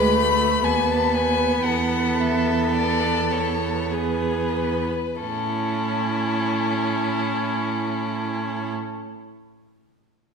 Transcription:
0, 0, Header, 1, 5, 480
1, 0, Start_track
1, 0, Key_signature, 3, "major"
1, 0, Tempo, 981997
1, 800, Time_signature, 3, 2, 24, 8
1, 800, Tempo, 1086957
1, 1280, Tempo, 1176471
1, 1760, Tempo, 1282051
1, 4171, End_track
2, 0, Start_track
2, 0, Title_t, "Violin"
2, 0, Program_c, 0, 40
2, 0, Note_on_c, 0, 83, 79
2, 313, Note_on_c, 0, 80, 74
2, 320, Note_off_c, 0, 83, 0
2, 446, Note_on_c, 0, 81, 62
2, 453, Note_off_c, 0, 80, 0
2, 560, Note_on_c, 0, 80, 72
2, 567, Note_off_c, 0, 81, 0
2, 801, Note_on_c, 0, 78, 61
2, 807, Note_off_c, 0, 80, 0
2, 1047, Note_on_c, 0, 76, 59
2, 1054, Note_off_c, 0, 78, 0
2, 1285, Note_off_c, 0, 76, 0
2, 1294, Note_on_c, 0, 74, 65
2, 1524, Note_on_c, 0, 73, 53
2, 1530, Note_off_c, 0, 74, 0
2, 1773, Note_on_c, 0, 71, 51
2, 1779, Note_off_c, 0, 73, 0
2, 2250, Note_off_c, 0, 71, 0
2, 2252, Note_on_c, 0, 69, 51
2, 3573, Note_off_c, 0, 69, 0
2, 4171, End_track
3, 0, Start_track
3, 0, Title_t, "Violin"
3, 0, Program_c, 1, 40
3, 0, Note_on_c, 1, 71, 61
3, 307, Note_off_c, 1, 71, 0
3, 311, Note_on_c, 1, 71, 50
3, 807, Note_on_c, 1, 69, 50
3, 813, Note_off_c, 1, 71, 0
3, 1763, Note_on_c, 1, 68, 38
3, 1769, Note_off_c, 1, 69, 0
3, 2140, Note_off_c, 1, 68, 0
3, 2247, Note_on_c, 1, 64, 41
3, 3567, Note_off_c, 1, 64, 0
3, 4171, End_track
4, 0, Start_track
4, 0, Title_t, "Viola"
4, 0, Program_c, 2, 41
4, 0, Note_on_c, 2, 56, 53
4, 72, Note_on_c, 2, 57, 52
4, 80, Note_off_c, 2, 56, 0
4, 306, Note_on_c, 2, 59, 50
4, 313, Note_off_c, 2, 57, 0
4, 1757, Note_off_c, 2, 59, 0
4, 1764, Note_on_c, 2, 59, 37
4, 2133, Note_off_c, 2, 59, 0
4, 2250, Note_on_c, 2, 61, 45
4, 3571, Note_off_c, 2, 61, 0
4, 4171, End_track
5, 0, Start_track
5, 0, Title_t, "Cello"
5, 0, Program_c, 3, 42
5, 0, Note_on_c, 3, 38, 54
5, 292, Note_off_c, 3, 38, 0
5, 312, Note_on_c, 3, 39, 51
5, 791, Note_off_c, 3, 39, 0
5, 798, Note_on_c, 3, 40, 46
5, 2122, Note_off_c, 3, 40, 0
5, 2249, Note_on_c, 3, 45, 44
5, 3570, Note_off_c, 3, 45, 0
5, 4171, End_track
0, 0, End_of_file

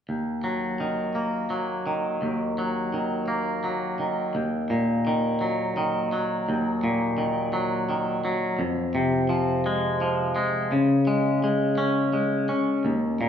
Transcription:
0, 0, Header, 1, 2, 480
1, 0, Start_track
1, 0, Tempo, 709220
1, 61, Time_signature, 6, 3, 24, 8
1, 8993, End_track
2, 0, Start_track
2, 0, Title_t, "Clean electric guitar"
2, 0, Program_c, 0, 27
2, 60, Note_on_c, 0, 39, 36
2, 297, Note_on_c, 0, 54, 41
2, 543, Note_on_c, 0, 51, 40
2, 779, Note_on_c, 0, 58, 37
2, 1013, Note_off_c, 0, 54, 0
2, 1016, Note_on_c, 0, 54, 36
2, 1255, Note_off_c, 0, 51, 0
2, 1263, Note_on_c, 0, 51, 43
2, 1501, Note_off_c, 0, 39, 0
2, 1503, Note_on_c, 0, 39, 43
2, 1740, Note_off_c, 0, 54, 0
2, 1748, Note_on_c, 0, 54, 44
2, 1979, Note_off_c, 0, 51, 0
2, 1984, Note_off_c, 0, 58, 0
2, 1987, Note_on_c, 0, 51, 36
2, 2219, Note_on_c, 0, 58, 42
2, 2454, Note_off_c, 0, 54, 0
2, 2462, Note_on_c, 0, 54, 36
2, 2695, Note_off_c, 0, 51, 0
2, 2703, Note_on_c, 0, 51, 38
2, 2706, Note_off_c, 0, 39, 0
2, 2943, Note_off_c, 0, 58, 0
2, 2944, Note_off_c, 0, 54, 0
2, 2944, Note_on_c, 0, 39, 44
2, 2945, Note_off_c, 0, 51, 0
2, 3182, Note_on_c, 0, 46, 47
2, 3430, Note_on_c, 0, 51, 43
2, 3663, Note_on_c, 0, 54, 42
2, 3898, Note_off_c, 0, 51, 0
2, 3906, Note_on_c, 0, 51, 45
2, 4137, Note_off_c, 0, 54, 0
2, 4145, Note_on_c, 0, 54, 41
2, 4146, Note_off_c, 0, 39, 0
2, 4385, Note_off_c, 0, 46, 0
2, 4390, Note_on_c, 0, 39, 47
2, 4627, Note_on_c, 0, 46, 48
2, 4851, Note_off_c, 0, 51, 0
2, 4859, Note_on_c, 0, 51, 44
2, 5089, Note_off_c, 0, 54, 0
2, 5097, Note_on_c, 0, 54, 44
2, 5336, Note_off_c, 0, 51, 0
2, 5344, Note_on_c, 0, 51, 45
2, 5574, Note_off_c, 0, 54, 0
2, 5582, Note_on_c, 0, 54, 45
2, 5587, Note_off_c, 0, 39, 0
2, 5812, Note_on_c, 0, 41, 51
2, 5823, Note_off_c, 0, 54, 0
2, 5824, Note_off_c, 0, 51, 0
2, 5825, Note_off_c, 0, 46, 0
2, 6056, Note_on_c, 0, 48, 51
2, 6290, Note_on_c, 0, 53, 41
2, 6538, Note_on_c, 0, 56, 48
2, 6769, Note_off_c, 0, 53, 0
2, 6777, Note_on_c, 0, 53, 45
2, 7002, Note_off_c, 0, 56, 0
2, 7010, Note_on_c, 0, 56, 48
2, 7016, Note_off_c, 0, 41, 0
2, 7252, Note_off_c, 0, 48, 0
2, 7255, Note_on_c, 0, 49, 52
2, 7256, Note_off_c, 0, 56, 0
2, 7259, Note_off_c, 0, 53, 0
2, 7494, Note_on_c, 0, 56, 51
2, 7732, Note_off_c, 0, 56, 0
2, 7740, Note_on_c, 0, 56, 43
2, 7971, Note_on_c, 0, 61, 44
2, 8204, Note_off_c, 0, 56, 0
2, 8212, Note_on_c, 0, 56, 42
2, 8445, Note_off_c, 0, 61, 0
2, 8453, Note_on_c, 0, 61, 43
2, 8455, Note_off_c, 0, 49, 0
2, 8695, Note_off_c, 0, 56, 0
2, 8695, Note_off_c, 0, 61, 0
2, 8695, Note_on_c, 0, 39, 53
2, 8939, Note_on_c, 0, 46, 51
2, 8993, Note_off_c, 0, 39, 0
2, 8993, Note_off_c, 0, 46, 0
2, 8993, End_track
0, 0, End_of_file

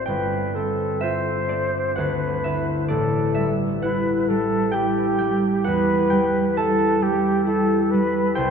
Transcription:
0, 0, Header, 1, 3, 480
1, 0, Start_track
1, 0, Tempo, 940439
1, 36, Time_signature, 3, 2, 24, 8
1, 1956, Tempo, 916031
1, 3396, Tempo, 892857
1, 4430, End_track
2, 0, Start_track
2, 0, Title_t, "Flute"
2, 0, Program_c, 0, 73
2, 38, Note_on_c, 0, 71, 60
2, 281, Note_on_c, 0, 69, 57
2, 288, Note_off_c, 0, 71, 0
2, 519, Note_on_c, 0, 72, 66
2, 527, Note_off_c, 0, 69, 0
2, 1006, Note_on_c, 0, 71, 70
2, 1014, Note_off_c, 0, 72, 0
2, 1469, Note_off_c, 0, 71, 0
2, 1472, Note_on_c, 0, 69, 64
2, 1807, Note_off_c, 0, 69, 0
2, 1947, Note_on_c, 0, 71, 68
2, 2194, Note_on_c, 0, 69, 61
2, 2202, Note_off_c, 0, 71, 0
2, 2430, Note_on_c, 0, 67, 72
2, 2438, Note_off_c, 0, 69, 0
2, 2907, Note_on_c, 0, 71, 69
2, 2915, Note_off_c, 0, 67, 0
2, 3393, Note_on_c, 0, 69, 70
2, 3401, Note_off_c, 0, 71, 0
2, 3637, Note_on_c, 0, 67, 64
2, 3645, Note_off_c, 0, 69, 0
2, 3865, Note_off_c, 0, 67, 0
2, 3868, Note_on_c, 0, 69, 74
2, 4111, Note_on_c, 0, 71, 70
2, 4119, Note_off_c, 0, 69, 0
2, 4348, Note_on_c, 0, 72, 75
2, 4356, Note_off_c, 0, 71, 0
2, 4430, Note_off_c, 0, 72, 0
2, 4430, End_track
3, 0, Start_track
3, 0, Title_t, "Harp"
3, 0, Program_c, 1, 46
3, 0, Note_on_c, 1, 33, 55
3, 0, Note_on_c, 1, 60, 47
3, 0, Note_on_c, 1, 66, 46
3, 0, Note_on_c, 1, 78, 77
3, 29, Note_on_c, 1, 79, 81
3, 38, Note_on_c, 1, 31, 59
3, 52, Note_off_c, 1, 78, 0
3, 55, Note_off_c, 1, 33, 0
3, 58, Note_off_c, 1, 66, 0
3, 279, Note_off_c, 1, 60, 0
3, 285, Note_on_c, 1, 60, 45
3, 514, Note_on_c, 1, 76, 85
3, 526, Note_on_c, 1, 65, 49
3, 761, Note_on_c, 1, 74, 64
3, 765, Note_off_c, 1, 60, 0
3, 772, Note_on_c, 1, 60, 44
3, 929, Note_off_c, 1, 76, 0
3, 998, Note_on_c, 1, 78, 84
3, 1010, Note_on_c, 1, 38, 60
3, 1021, Note_off_c, 1, 79, 0
3, 1026, Note_off_c, 1, 31, 0
3, 1027, Note_off_c, 1, 65, 0
3, 1028, Note_off_c, 1, 60, 0
3, 1246, Note_on_c, 1, 76, 85
3, 1252, Note_on_c, 1, 64, 46
3, 1255, Note_on_c, 1, 71, 50
3, 1466, Note_off_c, 1, 74, 0
3, 1472, Note_on_c, 1, 74, 78
3, 1481, Note_on_c, 1, 33, 63
3, 1495, Note_off_c, 1, 78, 0
3, 1501, Note_off_c, 1, 38, 0
3, 1701, Note_off_c, 1, 76, 0
3, 1707, Note_on_c, 1, 76, 81
3, 1718, Note_on_c, 1, 55, 48
3, 1881, Note_off_c, 1, 74, 0
3, 1952, Note_off_c, 1, 64, 0
3, 1952, Note_on_c, 1, 78, 82
3, 1959, Note_on_c, 1, 64, 54
3, 2194, Note_off_c, 1, 55, 0
3, 2200, Note_on_c, 1, 55, 50
3, 2419, Note_on_c, 1, 79, 91
3, 2421, Note_off_c, 1, 64, 0
3, 2428, Note_on_c, 1, 64, 53
3, 2658, Note_off_c, 1, 79, 0
3, 2665, Note_on_c, 1, 79, 92
3, 2670, Note_off_c, 1, 55, 0
3, 2677, Note_on_c, 1, 55, 52
3, 2766, Note_off_c, 1, 78, 0
3, 2905, Note_on_c, 1, 78, 90
3, 2918, Note_on_c, 1, 40, 67
3, 2934, Note_off_c, 1, 33, 0
3, 3138, Note_off_c, 1, 79, 0
3, 3144, Note_on_c, 1, 79, 96
3, 3148, Note_off_c, 1, 55, 0
3, 3155, Note_on_c, 1, 55, 52
3, 3279, Note_off_c, 1, 71, 0
3, 3391, Note_on_c, 1, 81, 91
3, 3392, Note_off_c, 1, 64, 0
3, 3398, Note_on_c, 1, 64, 55
3, 3625, Note_off_c, 1, 55, 0
3, 3631, Note_on_c, 1, 55, 51
3, 3754, Note_off_c, 1, 76, 0
3, 3866, Note_off_c, 1, 64, 0
3, 3872, Note_on_c, 1, 64, 58
3, 4118, Note_off_c, 1, 55, 0
3, 4124, Note_on_c, 1, 55, 55
3, 4343, Note_off_c, 1, 79, 0
3, 4349, Note_on_c, 1, 79, 96
3, 4360, Note_on_c, 1, 36, 65
3, 4370, Note_off_c, 1, 78, 0
3, 4372, Note_off_c, 1, 81, 0
3, 4373, Note_off_c, 1, 64, 0
3, 4376, Note_off_c, 1, 40, 0
3, 4430, Note_off_c, 1, 36, 0
3, 4430, Note_off_c, 1, 55, 0
3, 4430, Note_off_c, 1, 79, 0
3, 4430, End_track
0, 0, End_of_file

